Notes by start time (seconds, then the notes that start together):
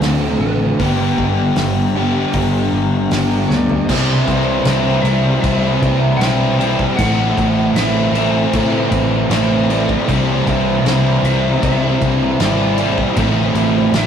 Already playing: D3 A3 C4 F#4 C5
0.01 D2 D3 A3 C4, snare, open hi-hat
0.05 F#4
0.40 A1 B4
0.80 G1 G2 D3 G3 B3 D4 G4, kick, open hi-hat
1.18 G1, kick
1.56 G1, snare, open hi-hat
1.95 G2 D3 G3 B3 D4 G4
2.33 G1, kick, open hi-hat
2.73 G1
3.11 G1 G2 D3 G3 B3 D4 G4, snare, open hi-hat
3.49 D2 D5, snare
3.70 floor tom
3.86 C2 C3 C5, kick, crash
3.90 E3 G3 C4 E4
4.27 C2 G3 C4 E4, kick, crash
4.65 C2 C3 E3 G3 C4 E4, snare, crash
5.02 C2 E4 E5, crash
5.06 G3 C4
5.41 C2 C3 E3 G3 C4 E4 E5, kick, crash
5.82 C2 G3 C4 E4, kick, crash
6.17 B1 C3 E3 G3 G5
6.21 C4 E4, snare, crash
6.58 G3 C4 E4, crash
6.79 kick
6.97 A1 A2 E3 A3 C4 E4 F#5, kick, crash
7.37 A1 A3 C4 E4, kick, crash
7.74 A1 E3 A3 C4 E5, snare, crash
7.78 E4
8.12 A1 A3 C4 E4, crash
8.53 A2 E3 A3 C4 E4, kick, crash
8.91 A1 A3 C4 E4, kick, crash
9.30 A1 E3 A3 C4 E4, snare, crash
9.69 A3 C4 E4 D5, crash
9.89 kick
10.06 C2 C3 E3 G3 C4 E4 C5, kick, crash
10.47 C2 G3 C4 E4, kick, crash
10.84 C2 E3 G3 C4 E4, snare, crash
11.23 C2 G3 C4 E4 E5, crash
11.62 C2 C3 E3 G3 C4 E4 E5, kick, crash
12.00 C2 G3 C4 E4, kick, crash
12.39 G#1 E3 G3 C4 E4 D5, snare, crash
12.78 G3 C4 E4, crash
12.98 kick
13.16 A1 A2 E3 A3 C4 E4 C5, kick, crash
13.55 A1 C4 E4, crash
13.59 A3
13.92 A1 E3 A3, snare, crash
13.97 C4 E4 E5